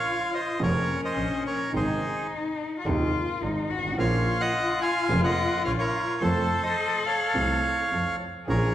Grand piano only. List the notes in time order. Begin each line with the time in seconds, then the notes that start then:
0.59 F1 F2 C#3 F3 A#3 F4
1.15 A#1 A#2
1.73 G#1 G#2 C3 D#3 G#3 D#4
2.86 D#1 D#2 C3 D#3 G#3 D#4
3.42 G#1 G#2
3.78 G1
3.85 G#1
3.91 A1
3.98 A#1 A#2 C#3 F3 A#3 F4
5.09 F1 F2 C#3 F3 A#3 F4
5.65 A#1 A#2
6.21 F2 C3 F3 A3 F4
7.34 C2 C3 F3 A3 F4
7.91 F2 F3
8.47 A#1 A#2 C#3 F3 A#3 F4